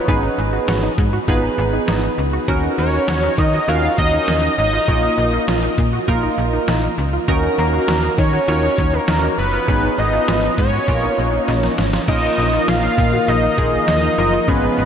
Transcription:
Already playing: B4
0.08 G#1 B3 C#4 D#4 G#4 B4, kick
0.23 D#4
0.38 G#1
0.53 F#4
0.68 G#1 F#4, snare
0.83 D#4
0.98 G#2, kick
1.13 F#4
1.28 G#1 B3 D#4 F4 G#4 B4, kick
1.43 D#4
1.58 G#1
1.73 D#4
1.88 G#1 D#4, snare
2.03 D#4
2.18 C#2
2.33 F#4
2.48 D#2 C#4 D#4 F#4 A#4, kick
2.64 D#4
2.78 D#2 C#5
2.93 F#4
3.08 D#2 F#4, snare
3.23 D#4
3.38 D#3 D#5, kick
3.53 F#4
3.68 D#2 C#4 D#4 F4 F#4 A#4 F5
3.84 D#4
3.98 D#2 D#5, kick
4.13 D#4
4.28 D#2 D#4, snare
4.43 D#4
4.58 G#1 D#5
4.73 F4
4.88 A#1 A#3 C#4 D#4 F4 A#4, kick
5.03 D#4
5.18 A#1
5.33 F4
5.48 A#1 F4, snare
5.63 D#4
5.78 A#2, kick
5.93 F#4
6.08 A#1 A#3 D#4 F4 A#4, kick
6.23 D#4
6.38 A#1
6.53 D#4
6.68 A#1 D#4, snare
6.83 D#4
6.98 C#2
7.13 F4
7.28 D#2 C#4 D#4 F#4 A#4, kick
7.43 D#4
7.58 D#2 A#4
7.73 F#4
7.88 D#2 F#4, snare
8.03 D#4
8.18 D#3 C#5, kick
8.33 F#4
8.48 D#2 C#4 D#4 F4 F#4 A#4 C#5
8.63 D#4
8.78 D#2, kick
8.93 D#4 A#4
9.08 D#2 D#4, snare
9.23 D#4
9.38 F#1 B4
9.53 F4
9.68 G#1 B3 C#4 D#4 G#4 B4, kick
9.83 D#4
9.98 G#1 D#5
10.13 F4
10.28 G#1 F4, snare
10.43 D#4
10.58 G#2 C#5, kick
10.73 F#4
10.88 A#1 A#3 C#4 F4 A#4, kick
11.03 D#4
11.18 A#1
11.33 D#4
11.48 A#1 D#4, snare
11.63 D#4, snare
11.78 G#1, snare
11.93 F4, snare
12.08 A#1 D#3 F3 A#3 C#4 D#4 F4 A#4 D#5, kick, crash
12.23 D#4
12.38 A#1
12.53 F4
12.68 A#1 F4 F5, snare
12.83 D#4
12.98 A#2, kick
13.13 F#4
13.28 A#1 F4 D#5
13.43 D#4
13.58 A#1 A#3 D#4 F4 G#4, kick
13.73 D#4
13.88 D#2 D#4 D#5, snare
14.03 D#4
14.18 F#1 A#3 D#4 F4 A#4
14.33 F4
14.48 G#1 C#3 G#3 B3 C#4 F4 G#4 B4, kick
14.63 D#4
14.78 G#1

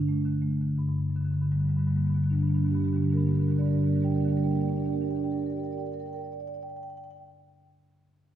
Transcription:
Already playing: G2 D4
0.08 A3
0.26 D3
0.42 A3
0.61 D3
0.79 G2
0.89 G2
0.99 G2
1.10 G2
1.16 D3
1.21 G2 D3
1.31 G2 D3
1.42 G2 D3
1.52 G2 D3 G3
1.61 D3 G3
1.65 G2
1.69 D3 G3
1.76 G2 D3 G3
1.87 G2 D3 G3 A#3
1.96 G2 D3 G3 A#3
2.04 D3 G3 A#3
2.09 G2
2.13 D3 G3 A#3
2.20 G2 G3 A#3
2.26 D3
2.30 G2 G3 A#3 D4
2.35 D3
2.39 G2 G3 A#3 D4
2.44 D3 D4
2.49 G3 A#3
2.54 G2 D3 A#3 D4
2.59 G3 D4
2.64 G2 D3 A#3
2.68 G3 D4 G4
2.74 G2 D3 G3 A#3 G4
2.79 A#3 D4
2.84 G2 D3 G3 G4
2.88 A#3 D4 G4
2.93 G2 D3 G3 A#3 D4
2.99 D3 D4 G4
3.04 G2 G3 A#3 G4
3.10 D3 G3 A#3 D4 G4 A#4
3.17 G2 A#3 D4 G4 A#4
3.21 D3 G3
3.26 G2 G3 A#3 D4 G4 A#4
3.30 D3
3.35 G3 A#3 D4 G4 A#4
3.39 G2 D3 D4 G4 A#4
3.44 D3 G3 A#3 G4
3.50 G2 A#3 D4 A#4
3.56 D3 G3 A#3 D4 G4 A#4 D5
3.61 G2 G4 A#4
3.65 D3 G3 A#3 D4 D5
3.70 G2 G4 A#4 D5
3.75 D3 G3 A#3 D4 A#4
3.79 G4 D5
3.83 G2 D3 G3 A#3 D4 G4 A#4
3.89 D4 G4 A#4 D5
3.94 D3 G3 A#3 D4 D5
4.00 G3 A#3 G4 A#4 D5
4.04 D3 D4 G4 A#4 G5
4.10 G3 A#3 D4 D5 G5
4.15 D3 G4 A#4 D5 G5
4.20 G3 A#3 D4 G4 A#4
4.25 D3 G3 A#3 D5 G5
4.29 D4 G4 A#4 D5 G5
4.36 G3 A#3 D4 G4 A#4 D5 G5
4.44 G3 A#3 D4 G4 A#4 D5 G5
4.50 A#3 D4 G4 A#4 G5
4.55 G3 G4 D5 G5
4.59 A#3 D4 A#4 D5 G5
4.65 A#3 G4 A#4
4.69 D4 G4 D5 G5
4.73 A#3 A#4 D5 G5
4.77 D4 G4 A#4
4.82 A#3 D4 G4 D5 G5
4.87 A#4 D5 G5
4.92 A#3 D4 G4 A#4 G5
4.98 D4 G4 A#4 D5
5.03 D5 G5
5.08 D4 G4 A#4 G5
5.12 G4 A#4 D5
5.17 D4 D5 G5
5.23 D4 G4 A#4 D5 G5
5.30 D4 G4 A#4 G5
5.34 G4 D5 G5
5.39 A#4 D5
5.44 G4 A#4 G5
5.50 G4 A#4 D5 G5
5.56 G4 A#4 D5 G5
5.64 G4 A#4 D5 G5
5.71 G4 A#4 D5 G5
5.78 A#4 D5 G5
5.86 A#4 D5 G5
5.92 A#4 D5 G5
5.99 A#4 D5 G5
6.06 A#4 D5 G5
6.13 A#4 D5 G5
6.19 A#4 G5
6.24 D5 G5
6.32 D5 G5
6.40 D5 G5
6.47 D5 G5
6.54 D5 G5
6.62 D5 G5
6.70 G5
6.76 G5
6.83 G5
6.90 G5
6.97 G5
7.04 G5
7.11 G5

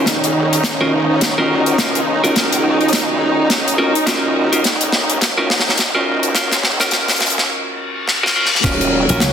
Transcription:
Already playing: D#3 C#4 D#4
0.06 D#1, kick, snare, closed hi-hat
0.24 closed hi-hat
0.53 closed hi-hat
0.64 F#1, kick, snare, closed hi-hat
0.81 C#4 F4 F#4 A#4
1.09 F#1
1.21 kick, snare, closed hi-hat
1.38 G#1 C#4 F4 F#4 A#4
1.50 D#1
1.66 F#1, closed hi-hat
1.78 C#4 F4 F#4 A#4, kick, snare, closed hi-hat
1.95 C#2, closed hi-hat
2.24 C#4 F4 F#4 A#4, closed hi-hat
2.36 kick, snare, closed hi-hat
2.53 closed hi-hat
2.81 D#2, closed hi-hat
2.88 closed hi-hat
2.93 kick, snare, closed hi-hat
2.98 closed hi-hat
3.10 D#1
3.50 C#2, kick, snare, closed hi-hat
3.68 closed hi-hat
3.78 C#4 F4 F#4 A#4
3.95 closed hi-hat
4.06 D#1 C#4 F4 F#4 A#4, kick, snare, closed hi-hat
4.52 C#4 F4 F#4 A#4, closed hi-hat
4.64 D#1, kick, snare, closed hi-hat
4.81 closed hi-hat
4.92 snare
5.10 closed hi-hat
5.21 F#1, kick, snare, closed hi-hat
5.37 C#4 F4 F#4 A#4
5.50 snare
5.59 snare
5.66 F#1, snare
5.78 kick, snare, closed hi-hat
5.95 G#1 C#4 F4 F#4 A#4
6.23 F#1, closed hi-hat
6.35 C#4 F4 F#4 A#4, kick, snare, closed hi-hat
6.52 C#2, snare, closed hi-hat
6.64 snare
6.80 C#4 F4 F#4 A#4, snare, closed hi-hat
6.91 kick, snare, closed hi-hat
7.08 snare, closed hi-hat
7.11 closed hi-hat
7.16 closed hi-hat
7.20 snare, closed hi-hat
7.26 closed hi-hat
7.30 closed hi-hat
7.38 D#2, snare
7.49 reverse cymbal
8.08 snare
8.23 C#4 F4 F#4 A#4, snare
8.35 C#4 F4 F#4 A#4
8.46 snare
8.55 snare
8.64 D#1 D#3 F#3 C#4 F4 F#4 A#4, kick, snare, closed hi-hat, crash, impact
8.81 closed hi-hat
9.09 A#1 C#4 F4 F#4 A#4, closed hi-hat
9.20 C#2, snare, closed hi-hat

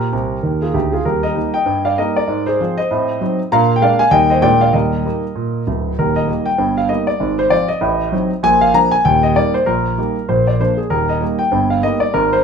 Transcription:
Already playing: A#2 G4 A#4
0.12 C2 C3
0.43 D#2 D#3
0.62 F4 G#4
0.74 D2 D3 D#4 G4
0.92 F4 G#4
1.05 D#2 G3 G4 A#4
1.23 A#4 D#5
1.35 G3 A#3 D#4
1.54 D#5 G5
1.66 G2
1.85 D5 F5
1.98 G3 A#3 D#4 A#4 D#5
2.16 A#4 D5
2.28 G#2
2.46 G#4 C5
2.60 F3 C4 F4
2.78 C5 D#5
2.91 A2 C4
3.21 F#3 C4 D#4
3.52 A#2 D4 F5 A#5
3.76 G5
3.82 G#3 A#3 D4 D5 F5
3.99 F5 G#5
4.11 D#2 G3 A#3 D#4 D#5 G5
4.30 C5 D#5
4.42 A#2 G#3 A#3 D4 D5 G5
4.61 D5 F5
4.73 D#2 G3 A#4 D#5
5.05 G3 A#3 D#4
5.36 A#2
5.67 D1 D2
5.99 D#1 D#2 A#4
6.16 D#5
6.28 G3 A#3
6.46 G5
6.58 G1 G2
6.78 F5
6.89 G3 A#3 D#4 D#5
7.07 D5
7.20 G#1 G#2
7.39 C5
7.50 F3 C4 F4 D5
7.68 D#5
7.81 A1 A2
8.12 F#3 C4 D#4
8.43 A#1 A#2 G#5
8.61 F5
8.74 F3 A#3 D4 A#5
8.91 G#5
9.05 D#1 D#2 G5
9.23 D#5
9.36 G3 A#3 D#4 D5
9.54 C5
9.66 A#1 A#2 A#4
9.98 G3 A#3 D#4
10.29 A#1 A#2 C5
10.47 D5
10.60 F3 A#3 D4 C5
10.77 G#4
10.90 D#1 D#2 A#4
11.09 D#5
11.21 G3 A#3 D#4
11.39 G5
11.52 G1 G2
11.70 F5
11.83 G3 A#3 D#4 D#5
12.00 D5
12.14 G#1 G#2 A#4
12.33 C5

